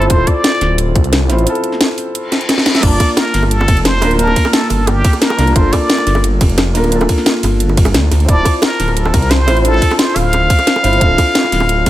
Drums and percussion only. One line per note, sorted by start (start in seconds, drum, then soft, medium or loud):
0.02 closed hi-hat soft
0.10 kick loud
0.10 closed hi-hat loud
0.27 kick medium
0.27 closed hi-hat medium
0.44 snare loud
0.44 closed hi-hat medium
0.61 snare soft
0.61 closed hi-hat medium
0.78 closed hi-hat loud
0.95 kick loud
0.95 closed hi-hat medium
1.04 closed hi-hat soft
1.13 snare loud
1.13 closed hi-hat loud
1.30 snare soft
1.30 closed hi-hat medium
1.38 closed hi-hat soft
1.47 closed hi-hat loud
1.55 closed hi-hat soft
1.64 closed hi-hat medium
1.72 snare soft
1.81 snare loud
1.81 closed hi-hat loud
1.98 open hi-hat medium
2.15 closed hi-hat medium
2.32 snare medium
2.32 closed hi-hat medium
2.41 closed hi-hat soft
2.49 snare medium
2.49 closed hi-hat loud
2.58 snare medium
2.66 snare loud
2.66 closed hi-hat medium
2.75 snare medium
2.75 closed hi-hat soft
2.83 kick loud
2.83 closed hi-hat loud
2.83 crash medium
3.00 kick medium
3.00 closed hi-hat medium
3.00 ride medium
3.00 high bongo soft
3.17 snare loud
3.17 closed hi-hat loud
3.17 high bongo medium
3.34 snare soft
3.34 closed hi-hat medium
3.34 ride medium
3.43 high bongo medium
3.51 closed hi-hat loud
3.61 high bongo medium
3.68 kick loud
3.68 closed hi-hat medium
3.68 ride medium
3.77 closed hi-hat soft
3.85 snare loud
3.85 closed hi-hat loud
3.85 high bongo medium
4.02 snare soft
4.02 closed hi-hat medium
4.02 ride medium
4.02 high bongo medium
4.11 closed hi-hat soft
4.19 closed hi-hat loud
4.28 high bongo medium
4.36 kick medium
4.36 closed hi-hat medium
4.36 ride medium
4.45 snare soft
4.45 high bongo medium
4.53 snare loud
4.53 closed hi-hat medium
4.70 open hi-hat medium
4.70 ride medium
4.70 high bongo medium
4.87 closed hi-hat medium
4.87 high bongo medium
5.05 kick loud
5.05 closed hi-hat medium
5.05 ride medium
5.13 closed hi-hat soft
5.13 high bongo medium
5.22 snare loud
5.22 closed hi-hat loud
5.30 high bongo medium
5.39 snare soft
5.39 closed hi-hat medium
5.39 ride medium
5.47 closed hi-hat soft
5.56 kick loud
5.56 closed hi-hat medium
5.56 high bongo medium
5.73 kick medium
5.73 closed hi-hat medium
5.73 ride medium
5.73 high bongo medium
5.90 snare loud
5.90 closed hi-hat medium
5.98 high bongo medium
6.07 snare soft
6.07 closed hi-hat medium
6.07 ride medium
6.15 high bongo medium
6.24 closed hi-hat medium
6.41 kick loud
6.41 closed hi-hat medium
6.41 ride medium
6.41 high bongo medium
6.49 closed hi-hat soft
6.58 snare loud
6.58 closed hi-hat medium
6.58 high bongo medium
6.75 snare soft
6.75 closed hi-hat medium
6.75 ride medium
6.84 closed hi-hat soft
6.84 high bongo medium
6.92 closed hi-hat medium
7.01 closed hi-hat soft
7.01 high bongo medium
7.09 kick medium
7.09 closed hi-hat medium
7.09 ride medium
7.18 snare soft
7.26 snare loud
7.26 closed hi-hat medium
7.26 high bongo medium
7.43 open hi-hat medium
7.43 ride medium
7.43 high bongo medium
7.60 closed hi-hat medium
7.69 high bongo medium
7.77 kick loud
7.77 closed hi-hat medium
7.77 ride medium
7.85 closed hi-hat soft
7.85 high bongo medium
7.94 snare loud
7.94 closed hi-hat medium
8.11 snare soft
8.11 closed hi-hat medium
8.11 ride medium
8.11 high bongo medium
8.20 closed hi-hat soft
8.29 kick loud
8.29 closed hi-hat medium
8.45 kick medium
8.45 closed hi-hat medium
8.45 ride medium
8.45 high bongo medium
8.62 snare loud
8.62 closed hi-hat medium
8.62 high bongo medium
8.80 snare soft
8.80 closed hi-hat medium
8.80 ride medium
8.88 high bongo medium
8.97 closed hi-hat medium
9.05 high bongo medium
9.14 kick loud
9.14 closed hi-hat medium
9.14 ride medium
9.22 closed hi-hat soft
9.31 snare loud
9.31 closed hi-hat medium
9.31 high bongo medium
9.48 snare soft
9.48 closed hi-hat medium
9.48 ride medium
9.48 high bongo medium
9.57 closed hi-hat soft
9.65 closed hi-hat loud
9.74 high bongo medium
9.82 kick medium
9.82 closed hi-hat medium
9.82 ride medium
9.91 snare soft
9.91 high bongo medium
9.99 snare loud
9.99 closed hi-hat medium
10.16 open hi-hat medium
10.16 ride medium
10.16 high bongo medium
10.33 closed hi-hat medium
10.33 high bongo medium
10.50 kick loud
10.50 closed hi-hat medium
10.50 ride medium
10.59 closed hi-hat soft
10.59 high bongo medium
10.67 snare loud
10.67 closed hi-hat medium
10.76 high bongo medium
10.84 snare soft
10.84 closed hi-hat medium
10.84 ride medium
10.93 closed hi-hat soft
11.01 kick loud
11.01 closed hi-hat loud
11.01 high bongo soft
11.18 kick medium
11.18 closed hi-hat medium
11.18 ride medium
11.18 high bongo medium
11.35 snare loud
11.35 closed hi-hat loud
11.44 high bongo medium
11.52 snare soft
11.52 closed hi-hat medium
11.52 ride medium
11.60 high bongo medium
11.69 closed hi-hat loud
11.86 kick loud
11.86 closed hi-hat medium
11.86 ride medium
11.86 high bongo soft